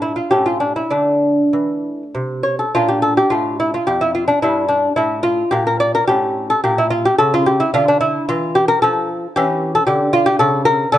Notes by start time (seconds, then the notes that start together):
Already playing: A2
0.02 E4
0.16 F4
0.31 A2 C#4 G4
0.46 F4
0.60 D4
0.76 E4
0.90 D3 A3 D4
1.53 E3
2.15 C3
2.43 C#5
2.59 A4
2.75 A#2 D4 F4
2.88 G4
3.02 A4
3.17 G4
3.30 A2 F4
3.60 E4
3.74 F4
3.87 F2 G4
4.01 E4
4.15 F4
4.28 D4
4.42 G2 D4 E4
4.68 D4
4.96 A2 E4
5.23 F4
5.51 A#2 G4
5.67 A#4
5.80 D5
5.95 A#4
6.07 A2 C#4 G4
6.50 A4
6.64 A#2 G4
6.78 E4
6.90 F4
7.05 G4
7.18 C#3 A4
7.34 F4
7.46 G4
7.60 E4
7.74 D3 D4 F4
7.88 D4
8.01 E4
8.29 E3 F4
8.55 G4
8.68 A#4
8.82 F3 A4
9.36 E3 C#4 G4
9.75 A4
9.87 D3 G4
10.13 F4
10.26 G4
10.39 C#3 A4
10.65 A#4
10.92 D3 D4 A4